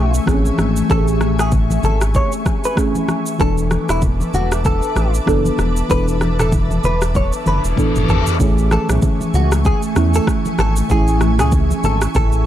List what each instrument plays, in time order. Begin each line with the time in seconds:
Already playing: analog synth bass B1, fm electric piano E3 A3 C#4 G#4, ambient pad A3 E5 G#5 C#6, clean electric guitar G#4
0.14 shaker
0.26 analog synth bass A1, fm electric piano E3 A3 C4 G#4, kick, cross-stick, shaker
0.34 fm electric piano C#4
0.45 high conga, shaker
0.58 analog synth bass G#1, cross-stick, high conga, shaker
0.76 shaker
0.89 analog synth bass A1, fm electric piano E3 A3 C#4 G4, clean electric guitar A4, kick, shaker
0.98 fm electric piano G#4
1.08 shaker
1.21 cross-stick, high conga, shaker
1.39 clean electric guitar G#4, cross-stick, shaker
1.52 kick, low conga, shaker
1.70 high conga, shaker
1.83 analog synth bass G#1, clean electric guitar A4, high conga, low conga, shaker
2.01 cross-stick, shaker
2.14 clean electric guitar C#5, kick, low conga, shaker
2.32 shaker
2.46 kick, cross-stick, high conga, shaker
2.64 clean electric guitar B4, shaker
2.76 fm electric piano E3 A3 C#4 G#4, kick, cross-stick, shaker
2.95 high conga, shaker
3.08 cross-stick, high conga, shaker
3.26 shaker
3.38 analog synth bass E1, fm electric piano E3 B3 D4 A4, clean electric guitar A4, ambient pad B4 E5 A5 D6, kick, shaker
3.58 shaker
3.71 cross-stick, high conga, shaker
3.89 analog synth bass E1, clean electric guitar E4, cross-stick, shaker
4.02 kick, low conga, shaker
4.20 high conga, shaker
4.33 analog synth bass E1, clean electric guitar F#4, high conga, low conga, shaker
4.52 cross-stick, shaker
4.65 clean electric guitar A4, kick, low conga, shaker
4.82 shaker
4.96 analog synth bass A1, cross-stick, high conga, shaker
5.14 shaker
5.26 analog synth bass F#1, fm electric piano E3 B3 D4 A4, kick, cross-stick, shaker
5.45 high conga, shaker
5.58 analog synth bass E1, cross-stick, high conga, shaker
5.77 shaker
5.89 analog synth bass E1, fm electric piano E3 B3 D4 A4, clean electric guitar B4, kick, shaker
6.08 shaker
6.21 cross-stick, high conga, shaker
6.39 clean electric guitar A4, cross-stick, mid tom, shaker
6.52 kick, low conga, shaker
6.71 high conga, shaker
6.83 analog synth bass E1, clean electric guitar B4, high conga, low conga, shaker
7.02 cross-stick, shaker
7.15 clean electric guitar C#5, kick, high tom, reverse cymbal, low conga, shaker
7.33 shaker
7.46 analog synth bass F#1, clean electric guitar B4, mid tom, high conga, shaker
7.64 analog synth bass E1, shaker
7.76 fm electric piano E3 B3 D4 A4, kick, mid tom, shaker
7.95 analog synth bass F#1, mid tom, high conga, shaker
8.08 analog synth bass G#1, clean electric guitar A4, floor tom, high conga, shaker
8.27 floor tom, shaker
8.39 analog synth bass A1, fm electric piano E3 A3 C#4 G#4, ambient pad A3 E5 G#5 C#6, kick, shaker
8.58 shaker
8.71 clean electric guitar A4, cross-stick, high conga, shaker
8.88 analog synth bass B1, fm electric piano E3 A3 C#4 G#4, cross-stick, mid tom, shaker
9.02 kick, low conga, shaker
9.21 high conga, shaker
9.34 analog synth bass C#2, clean electric guitar F#4, high conga, low conga, shaker
9.52 cross-stick, shaker
9.65 clean electric guitar G#4, kick, low conga, shaker
9.82 shaker
9.95 analog synth bass E2, fm electric piano E3 A3 C#4 E4, cross-stick, high conga, shaker
10.14 clean electric guitar A4, shaker
10.27 kick, cross-stick, shaker
10.45 high conga, shaker
10.58 analog synth bass G#1, clean electric guitar A4, cross-stick, high conga, shaker
10.76 shaker
10.89 analog synth bass A1, fm electric piano E3 A3 C#4 E4, clean electric guitar G#4, kick, shaker
11.08 shaker
11.21 cross-stick, high conga, shaker
11.38 analog synth bass C#2, fm electric piano E3 A3 C#4 G#4, clean electric guitar G#4, cross-stick, mid tom, shaker
11.52 kick, low conga, shaker
11.71 high conga, shaker
11.83 analog synth bass G#1, clean electric guitar A4, high conga, low conga, shaker
12.02 cross-stick, shaker
12.15 analog synth bass A1, clean electric guitar A4, kick, low conga, shaker
12.32 shaker